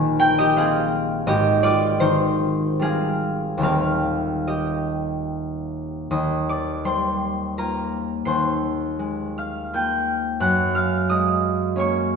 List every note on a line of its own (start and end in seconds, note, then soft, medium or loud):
0.00 1.28 A#1 medium
0.00 1.29 D#3 medium
0.00 0.55 A#3 medium
0.00 0.20 A#4 medium
0.00 1.99 C5 medium
0.00 0.56 F5 loud
0.00 3.07 G#5 loud
0.20 1.29 A#4 medium
0.20 0.50 G5 loud
0.38 1.27 G4 medium
0.38 0.68 D#5 loud
0.56 1.30 A#3 medium
0.56 2.80 C4 medium
0.56 2.81 G#4 medium
0.56 1.30 F5 medium
1.27 3.65 G#1 medium
1.27 4.47 G4 medium
1.27 4.46 D#5 loud
1.63 3.66 F4 medium
1.63 2.27 D5 loud
2.00 3.58 D#3 medium
2.00 5.91 D#4 medium
2.00 5.90 C5 loud
2.79 3.59 G3 medium
2.79 3.61 C4 medium
2.79 3.66 G#4 medium
2.79 3.62 F5 loud
3.58 6.14 D#1 medium
3.58 6.10 D#2 medium
3.58 6.13 D#3 soft
3.58 6.84 G3 medium
3.62 6.15 C4 soft
3.62 7.55 A#4 medium
3.62 7.53 F5 medium
4.48 8.38 G4 medium
4.48 6.11 D#5 medium
6.11 8.25 D#2 medium
6.11 10.02 D#5 medium
6.11 10.01 D#6 medium
6.49 8.28 D5 medium
6.49 7.11 D6 medium
6.84 10.43 G3 medium
6.84 8.25 C5 medium
6.84 8.04 C6 medium
7.58 9.73 A#3 soft
7.58 9.73 F4 soft
7.58 11.49 A#4 medium
7.58 11.48 A#5 medium
8.25 10.44 D#2 medium
8.25 10.44 C5 medium
8.25 10.44 C6 medium
8.99 11.09 G#3 medium
9.38 10.44 F5 medium
9.38 10.44 F6 medium
9.73 11.76 A#3 soft
9.73 10.44 F4 soft
9.73 10.45 G5 medium
9.73 10.44 G6 medium
10.40 12.16 F#2 medium
10.40 12.16 F#5 medium
10.40 12.16 F#6 medium
10.75 12.16 F5 medium
10.75 11.34 F6 medium
11.09 12.16 G#3 medium
11.09 12.16 D#5 medium
11.09 12.16 D#6 medium
11.76 12.16 A#3 soft
11.76 12.16 C#4 medium
11.76 12.16 C#5 medium
11.76 12.16 C#6 medium